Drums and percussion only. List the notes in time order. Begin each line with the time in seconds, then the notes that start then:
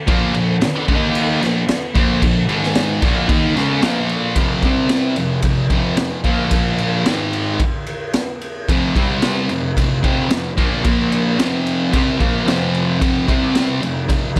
0.08 kick, crash
0.34 crash
0.61 snare, crash
0.88 kick, crash
1.15 crash
1.43 snare, crash
1.68 snare, crash
1.95 kick, crash
2.22 kick, crash
2.49 crash
2.63 snare
2.75 snare, crash
3.02 kick, crash
3.29 kick, crash
3.57 snare, crash
3.82 snare, crash
4.09 crash
4.36 kick, ride
4.62 kick, ride
4.89 snare, ride
5.16 ride
5.42 kick, ride
5.70 kick, ride
5.97 snare, ride
6.24 kick, ride
6.51 kick, ride
6.78 ride
7.06 snare, ride
7.33 ride
7.60 kick, ride
7.87 ride
8.13 snare, ride
8.41 ride
8.69 kick, ride
8.96 kick, ride
9.22 snare, ride
9.49 ride
9.77 kick, ride
10.04 kick, ride
10.30 snare, ride
10.58 kick, ride
10.84 kick, ride
11.12 ride
11.39 snare, ride
11.67 ride
11.93 kick, ride
12.20 kick, ride
12.48 snare, ride
12.74 ride
13.01 kick, ride
13.28 kick, ride
13.55 snare, ride
13.83 ride
14.09 kick, ride
14.36 kick, ride